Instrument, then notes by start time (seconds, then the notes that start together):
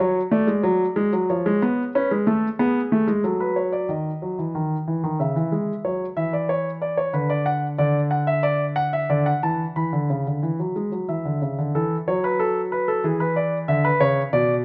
grand piano
0.00 F#3 C#5
0.31 A3 D5
0.47 G#3
0.63 F#3
0.96 G#3
1.13 F#3
1.30 F3 C#5
1.46 G#3
1.62 B3
1.95 C#4 B4
2.11 G#3
2.27 A3 A4
2.59 B3 G#4
2.92 A3
3.08 G#3
3.24 F#3 A4
3.40 B4
3.56 C#5
3.72 D5
3.89 D#3 D#5
4.22 F#3
4.39 E3
4.55 D#3
4.88 E3
5.04 D#3
5.20 C#3 E5
5.36 E3
5.52 G#3
5.85 F#3 C#5
6.17 E3 E5
6.33 D5
6.49 C#5
6.82 D5
6.97 C#5
7.13 D3 B4
7.30 D5
7.46 F#5
7.78 D3 D5
8.11 F#5
8.27 E5
8.43 D5
8.76 F#5
8.93 E5
9.10 D3 D5
9.26 F#5
9.43 E3 A5
9.76 E3 B5
9.93 D3
10.10 C#3
10.27 D3
10.43 E3
10.60 F#3
10.76 G#3
10.92 F#3
11.09 E3 E5
11.25 D3
11.42 C#3
11.58 D3
11.75 E3 A4
12.08 F#3 C#5
12.24 B4
12.40 A4
12.72 B4
12.88 A4
13.04 E3 G#4
13.20 B4
13.36 D5
13.68 D3 E5
13.85 B4
14.00 C#3 C#5
14.33 B2 D5